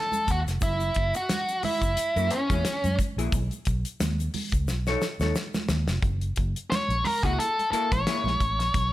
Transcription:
Already playing: lead electric guitar A4
0.12 closed hi-hat, muted conga, high conga, shaker
0.27 fingered electric bass D#2, lead electric guitar F#4, kick, closed hi-hat, low conga, shaker
0.46 fingered electric bass F1, snare, closed hi-hat, shaker
0.61 fingered electric bass F#1, lead electric guitar E4, kick, closed hi-hat, muted conga, low conga, shaker
0.80 closed hi-hat, muted conga, shaker
0.95 fingered electric bass F#1, kick, closed hi-hat
1.14 lead electric guitar F#4, closed hi-hat, shaker
1.29 snare, closed hi-hat, high conga, shaker
1.49 closed hi-hat, shaker
1.63 lead electric guitar E4, muted fingered electric bass stroke, open hi-hat, high conga, low conga
1.81 fingered electric bass F#1, kick, closed hi-hat, shaker
1.97 muted fingered electric bass stroke, closed hi-hat, shaker
2.16 fingered electric bass F#2, hollow-body jazz guitar A#3 E4 A#4, closed hi-hat, shaker
2.31 lead electric guitar C#4, closed hi-hat
2.50 fingered electric bass E2, hollow-body jazz guitar A#3 E4 G#4, kick, closed hi-hat, high conga, shaker
2.65 snare, closed hi-hat, muted conga, shaker
2.84 fingered electric bass F#2, closed hi-hat, muted conga, high conga, shaker
2.99 kick, closed hi-hat, low conga, shaker
3.17 fingered electric bass A#1, hollow-body jazz guitar A#3 E4 G#4, closed hi-hat, shaker
3.32 fingered electric bass B1, kick, closed hi-hat, muted conga, low conga, shaker
3.51 closed hi-hat, muted conga, shaker
3.65 fingered electric bass B1, kick, closed hi-hat, shaker
3.85 closed hi-hat, shaker
4.00 fingered electric bass D#2, snare, closed hi-hat, muted conga, high conga, shaker
4.20 closed hi-hat, muted conga, shaker
4.34 open hi-hat, high conga, low conga
4.52 fingered electric bass C#2, kick, closed hi-hat, shaker
4.67 fingered electric bass B1, snare, muted conga, shaker
4.87 hollow-body jazz guitar D#4 A4 C#5, snare, muted conga, shaker
5.02 snare, shaker
5.20 fingered electric bass D#2, hollow-body jazz guitar D#4 A4 C#5, snare, high conga, shaker
5.35 snare, shaker
5.54 snare, muted conga, high conga, shaker
5.69 fingered electric bass D#2, snare, low conga, shaker
5.87 fingered electric bass F1, snare, shaker
6.02 fingered electric bass F#1, kick, closed hi-hat, low conga
6.21 closed hi-hat
6.36 fingered electric bass F#1, kick, closed hi-hat
6.56 closed hi-hat
6.70 lead electric guitar C#5, snare, closed hi-hat, muted conga, high conga
6.88 fingered electric bass A#1, closed hi-hat, muted conga
7.05 lead electric guitar A#4, open hi-hat, high conga, low conga
7.23 fingered electric bass C#2, hollow-body jazz guitar A#3 E4 G#4, lead electric guitar F#4, kick, closed hi-hat
7.39 lead electric guitar A4, closed hi-hat, muted conga
7.59 closed hi-hat, muted conga
7.72 hollow-body jazz guitar A#3 E4 A#4, lead electric guitar A4, muted fingered electric bass stroke, closed hi-hat
7.92 fingered electric bass A1, lead electric guitar C#5, kick, closed hi-hat, high conga
8.07 hollow-body jazz guitar A#3 E4 G#4, snare, closed hi-hat, muted conga
8.24 fingered electric bass A#1, snare, muted conga, high conga
8.40 fingered electric bass A1, kick, closed hi-hat
8.59 fingered electric bass A#1, snare, closed hi-hat
8.74 fingered electric bass B1, kick, closed hi-hat, low conga

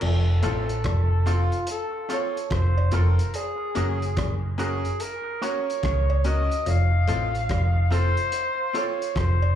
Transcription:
0.01 fingered electric bass F1, clav F2, flugelhorn A4, crash, cowbell
0.43 fingered electric bass A1, clav A2, clean electric guitar C4 F4 A4, upright piano C4 F4 A4, flugelhorn A4, closed hi-hat
0.69 closed hi-hat
0.84 fingered electric bass F1, clav F2, kick, cross-stick, closed hi-hat, cowbell
1.26 upright piano C4 F4 A4, clean electric guitar C4 F4 A4, flugelhorn F4, closed hi-hat
1.52 closed hi-hat
1.67 flugelhorn A4, closed hi-hat
2.09 clean electric guitar C4 F4 A4, upright piano C4 F4 A4, flugelhorn C#5, closed hi-hat
2.37 closed hi-hat
2.50 fingered electric bass F1, clav F2, flugelhorn C5, kick, cross-stick, closed hi-hat
2.78 cowbell
2.91 fingered electric bass F1, clav F2, clean electric guitar C4 F4 A4, upright piano C4 F4 A4, flugelhorn A#4, closed hi-hat
3.19 closed hi-hat
3.34 flugelhorn G#4, closed hi-hat, cowbell
3.75 fingered electric bass F#1, clav F#2, upright piano C#4 F#4 A#4, clean electric guitar C#4 F#4 A#4, closed hi-hat
4.02 closed hi-hat
4.17 fingered electric bass F#1, clav F#2, kick, cross-stick, closed hi-hat, cowbell
4.58 upright piano C#4 F#4 A#4, clean electric guitar C#4 F#4 A#4, flugelhorn G#4, closed hi-hat
4.85 closed hi-hat
5.00 flugelhorn A#4, closed hi-hat
5.41 clean electric guitar C#4 F#4 A#4, upright piano C#4 F#4 A#4, flugelhorn C#5, closed hi-hat
5.70 closed hi-hat
5.83 fingered electric bass C#2, clav C#3, kick, cross-stick, closed hi-hat
6.10 cowbell
6.24 clean electric guitar C#4 F#4 A#4, upright piano C#4 F#4 A#4, flugelhorn D#5, closed hi-hat
6.51 closed hi-hat
6.66 fingered electric bass F1, clav F2, flugelhorn F5, closed hi-hat, cowbell
7.08 fingered electric bass A1, clav A2, upright piano C4 F4 A4, clean electric guitar C4 F4 A4, closed hi-hat
7.35 closed hi-hat
7.49 fingered electric bass F1, clav F2, kick, cross-stick, closed hi-hat, cowbell
7.91 upright piano C4 F4 A4, clean electric guitar C4 F4 A4, flugelhorn C5, closed hi-hat
8.17 closed hi-hat
8.32 closed hi-hat
8.73 upright piano C4 F4 A4, clean electric guitar C4 F4 A4, flugelhorn C#5, closed hi-hat
9.02 closed hi-hat
9.16 fingered electric bass F1, clav F2, flugelhorn C5, kick, cross-stick, closed hi-hat
9.42 cowbell

